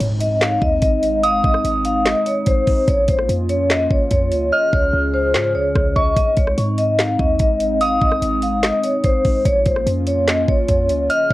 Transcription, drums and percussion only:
0.00 closed hi-hat
0.21 closed hi-hat
0.41 snare, clap, closed hi-hat
0.62 kick
0.82 kick, closed hi-hat
1.03 closed hi-hat
1.24 closed hi-hat
1.44 kick
1.54 cross-stick
1.65 closed hi-hat
1.85 closed hi-hat
2.06 snare, clap, closed hi-hat
2.26 closed hi-hat
2.46 kick, closed hi-hat
2.67 kick, open hi-hat
2.88 kick, closed hi-hat
3.08 kick, closed hi-hat
3.19 cross-stick
3.29 closed hi-hat
3.49 closed hi-hat
3.70 snare, clap, closed hi-hat
3.91 kick
4.11 kick, closed hi-hat
4.31 closed hi-hat
4.73 kick
5.34 snare, clap
5.76 kick, cross-stick
5.96 kick
6.17 kick, closed hi-hat
6.37 kick, closed hi-hat
6.47 cross-stick
6.58 closed hi-hat
6.78 closed hi-hat
6.99 snare, clap, closed hi-hat
7.19 kick
7.39 kick, closed hi-hat
7.60 closed hi-hat
7.81 closed hi-hat
8.02 kick
8.12 cross-stick
8.22 closed hi-hat
8.42 closed hi-hat
8.63 snare, clap, closed hi-hat
8.84 closed hi-hat
9.04 kick, closed hi-hat
9.25 kick, open hi-hat
9.45 kick, closed hi-hat
9.66 kick, closed hi-hat
9.76 cross-stick
9.87 closed hi-hat
10.07 closed hi-hat
10.28 snare, clap, closed hi-hat
10.48 kick
10.68 kick, closed hi-hat
10.89 closed hi-hat
11.10 closed hi-hat

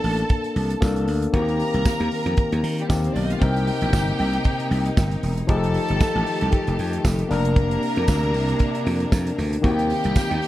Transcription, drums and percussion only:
0.04 open hi-hat
0.18 closed hi-hat
0.29 kick, closed hi-hat
0.44 closed hi-hat
0.56 open hi-hat
0.70 closed hi-hat
0.82 kick, snare, tambourine
0.96 closed hi-hat
1.08 open hi-hat
1.22 closed hi-hat
1.34 kick, closed hi-hat
1.49 closed hi-hat
1.60 open hi-hat
1.74 closed hi-hat
1.85 kick, snare, tambourine
2.00 closed hi-hat
2.11 open hi-hat
2.26 closed hi-hat
2.37 kick, closed hi-hat
2.52 closed hi-hat
2.64 open hi-hat
2.78 closed hi-hat
2.90 kick, snare, tambourine
3.04 closed hi-hat
3.16 open hi-hat
3.30 closed hi-hat
3.42 kick, closed hi-hat
3.56 closed hi-hat
3.67 open hi-hat
3.81 closed hi-hat
3.93 kick, snare, tambourine
4.07 closed hi-hat
4.19 open hi-hat
4.33 closed hi-hat
4.44 kick, closed hi-hat
4.60 closed hi-hat
4.71 open hi-hat
4.86 closed hi-hat
4.97 kick, snare, tambourine
5.11 closed hi-hat
5.23 open hi-hat
5.38 closed hi-hat
5.49 kick, closed hi-hat
5.64 closed hi-hat
5.74 open hi-hat
5.88 closed hi-hat
6.00 kick, snare, tambourine
6.15 closed hi-hat
6.26 open hi-hat
6.41 closed hi-hat
6.52 kick, closed hi-hat
6.67 closed hi-hat
6.79 open hi-hat
6.93 closed hi-hat
7.05 kick, snare, tambourine
7.19 closed hi-hat
7.31 snare, open hi-hat
7.45 closed hi-hat
7.56 kick, closed hi-hat
7.71 closed hi-hat
7.83 open hi-hat
7.96 closed hi-hat
8.08 kick, snare, tambourine
8.23 closed hi-hat
8.34 open hi-hat
8.49 closed hi-hat
8.59 kick, closed hi-hat
8.75 closed hi-hat
8.86 open hi-hat
9.00 closed hi-hat
9.12 kick, snare, tambourine
9.27 closed hi-hat
9.39 snare, open hi-hat
9.53 closed hi-hat
9.64 kick, closed hi-hat
9.79 closed hi-hat
9.90 open hi-hat
10.04 closed hi-hat
10.16 kick, snare, tambourine
10.31 closed hi-hat
10.42 open hi-hat

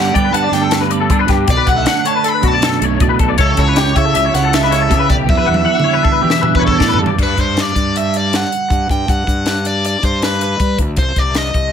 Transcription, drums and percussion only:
0.15 kick, closed hi-hat
0.34 closed hi-hat
0.53 snare, closed hi-hat
0.71 snare, closed hi-hat
0.91 closed hi-hat
1.10 kick, closed hi-hat
1.28 kick, snare, closed hi-hat
1.48 kick, closed hi-hat
1.67 kick, closed hi-hat
1.86 snare, closed hi-hat
2.05 closed hi-hat
2.24 closed hi-hat
2.43 kick, closed hi-hat
2.62 snare, closed hi-hat
2.82 closed hi-hat
3.00 kick, closed hi-hat
3.19 kick, closed hi-hat
3.38 kick, closed hi-hat
3.57 kick, closed hi-hat
3.76 snare, closed hi-hat
3.96 kick, closed hi-hat
4.15 closed hi-hat
4.34 snare, closed hi-hat
4.53 snare, closed hi-hat
4.72 snare, closed hi-hat
4.91 kick, closed hi-hat
5.10 kick, closed hi-hat
5.29 kick, high tom
5.54 high tom
5.80 mid tom
6.05 kick
6.30 snare
6.43 mid tom
6.55 kick
6.68 kick
6.80 kick, snare
6.94 floor tom
7.06 floor tom
7.19 kick, crash
7.38 kick, closed hi-hat
7.57 snare, closed hi-hat
7.76 kick, closed hi-hat
7.96 closed hi-hat
8.14 closed hi-hat
8.33 snare, closed hi-hat
8.52 closed hi-hat
8.70 kick, closed hi-hat
8.89 kick, closed hi-hat
9.08 kick, closed hi-hat
9.27 kick, closed hi-hat
9.46 snare, closed hi-hat
9.65 closed hi-hat
9.85 closed hi-hat
10.03 kick, closed hi-hat
10.22 snare, closed hi-hat
10.41 closed hi-hat
10.60 kick, closed hi-hat
10.78 kick, closed hi-hat
10.96 kick, closed hi-hat
11.16 kick, closed hi-hat
11.35 snare, closed hi-hat
11.54 kick, closed hi-hat

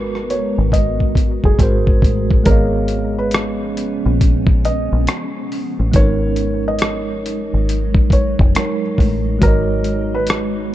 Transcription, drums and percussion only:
0.15 cross-stick
0.30 closed hi-hat
0.72 kick, closed hi-hat
1.00 kick
1.15 kick, closed hi-hat
1.44 kick
1.59 kick, closed hi-hat
1.87 kick
2.02 kick, closed hi-hat
2.31 kick
2.46 kick, closed hi-hat
2.88 closed hi-hat
3.31 cross-stick, closed hi-hat
3.77 closed hi-hat
4.21 kick, closed hi-hat
4.47 kick
4.65 closed hi-hat
5.07 cross-stick, closed hi-hat
5.52 open hi-hat
5.93 kick, closed hi-hat
6.36 closed hi-hat
6.79 cross-stick, closed hi-hat
7.26 closed hi-hat
7.69 closed hi-hat
7.95 kick
8.10 kick, closed hi-hat
8.39 kick
8.55 cross-stick, closed hi-hat
8.98 kick, open hi-hat
9.42 kick, closed hi-hat
9.84 closed hi-hat
10.27 cross-stick, closed hi-hat

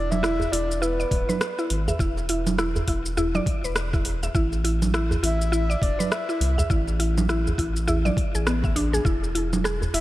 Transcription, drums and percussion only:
0.12 low conga, shaker
0.24 cross-stick, shaker
0.40 djembe bass, shaker
0.53 open hi-hat, djembe slap
0.71 shaker
0.83 shaker
1.00 shaker
1.11 kick, open hi-hat
1.29 low conga, shaker
1.41 cross-stick, shaker
1.59 shaker
1.70 open hi-hat
1.88 djembe tone, djembe bass, shaker
1.99 kick, shaker
2.17 djembe slap, djembe tone, shaker
2.29 open hi-hat
2.47 low conga, shaker
2.59 cross-stick, shaker
2.76 djembe bass, shaker
2.88 kick, open hi-hat, djembe slap
3.06 shaker
3.18 djembe bass, shaker
3.35 low conga, shaker
3.46 kick, open hi-hat
3.65 shaker
3.76 cross-stick, shaker
3.93 kick, djembe tone, shaker
4.05 open hi-hat, djembe tone
4.23 djembe tone, shaker
4.35 kick, shaker
4.53 djembe slap, shaker
4.65 open hi-hat
4.82 low conga, shaker
4.94 cross-stick, shaker
5.11 djembe bass, shaker
5.24 open hi-hat, djembe slap
5.41 shaker
5.53 shaker
5.71 shaker
5.82 kick, open hi-hat
6.00 low conga, shaker
6.12 cross-stick, shaker
6.29 shaker
6.41 open hi-hat
6.58 djembe tone, djembe bass, shaker
6.70 kick, shaker
6.87 djembe slap, djembe tone, shaker
7.00 open hi-hat
7.18 low conga, shaker
7.29 cross-stick, shaker
7.47 djembe bass, shaker
7.58 kick, open hi-hat, djembe slap
7.76 shaker
7.88 djembe bass, shaker
8.06 low conga, shaker
8.17 kick, open hi-hat
8.35 shaker
8.47 cross-stick, shaker
8.64 kick, djembe tone, shaker
8.76 open hi-hat, djembe tone
8.93 djembe tone, shaker
9.05 kick, shaker
9.23 djembe slap, shaker
9.35 open hi-hat
9.53 low conga, shaker
9.65 cross-stick, shaker
9.82 djembe bass, shaker
9.94 open hi-hat, djembe slap

